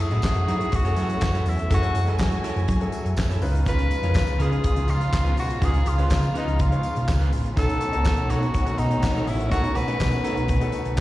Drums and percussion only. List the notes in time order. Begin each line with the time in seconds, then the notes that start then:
0.11 closed hi-hat
0.22 kick, snare, clap, tambourine
0.35 closed hi-hat
0.48 closed hi-hat
0.61 closed hi-hat
0.72 kick, closed hi-hat
0.85 closed hi-hat
0.96 closed hi-hat, tambourine
1.09 closed hi-hat
1.21 kick, snare, clap, tambourine
1.35 snare, closed hi-hat
1.46 open hi-hat, tambourine
1.59 closed hi-hat
1.70 kick, closed hi-hat, tambourine
1.83 closed hi-hat
1.95 closed hi-hat, tambourine
2.07 closed hi-hat
2.18 kick, snare, clap, tambourine
2.31 closed hi-hat
2.44 closed hi-hat, tambourine
2.57 closed hi-hat
2.68 kick, closed hi-hat, tambourine
2.81 closed hi-hat
2.92 closed hi-hat, tambourine
3.06 closed hi-hat
3.16 kick, snare, clap, tambourine
3.31 snare, closed hi-hat
3.41 open hi-hat, tambourine
3.55 closed hi-hat
3.65 kick, closed hi-hat, tambourine
3.79 closed hi-hat
3.91 closed hi-hat, tambourine
4.03 closed hi-hat
4.14 kick, snare, clap, tambourine
4.27 closed hi-hat
4.40 closed hi-hat
4.52 closed hi-hat
4.64 kick, closed hi-hat, tambourine
4.76 closed hi-hat
4.88 closed hi-hat, tambourine
5.01 closed hi-hat
5.13 kick, snare, clap, tambourine
5.26 closed hi-hat
5.37 open hi-hat, tambourine
5.50 closed hi-hat
5.61 kick, closed hi-hat, tambourine
5.74 closed hi-hat
5.86 closed hi-hat, tambourine
5.98 closed hi-hat
6.10 kick, snare, clap, tambourine
6.22 closed hi-hat
6.35 closed hi-hat, tambourine
6.48 closed hi-hat
6.59 kick, closed hi-hat
6.72 closed hi-hat
6.83 closed hi-hat, tambourine
6.96 closed hi-hat
7.08 kick, snare, clap, tambourine
7.22 closed hi-hat
7.32 open hi-hat, tambourine
7.46 closed hi-hat
7.57 kick, closed hi-hat, tambourine
7.69 closed hi-hat
7.81 closed hi-hat, tambourine
7.93 closed hi-hat
8.05 kick, snare, clap, tambourine
8.17 closed hi-hat
8.30 closed hi-hat, tambourine
8.42 closed hi-hat
8.54 kick, closed hi-hat, tambourine
8.66 closed hi-hat
8.78 closed hi-hat, tambourine
8.91 closed hi-hat
9.02 kick, snare, clap, tambourine
9.16 snare, closed hi-hat
9.27 open hi-hat, tambourine
9.40 closed hi-hat
9.51 kick, closed hi-hat, tambourine
9.64 closed hi-hat
9.75 closed hi-hat, tambourine
9.88 closed hi-hat
10.00 kick, snare, clap, tambourine
10.12 closed hi-hat
10.24 closed hi-hat
10.37 closed hi-hat
10.48 kick, closed hi-hat, tambourine
10.61 closed hi-hat
10.72 closed hi-hat, tambourine
10.85 closed hi-hat
10.97 tambourine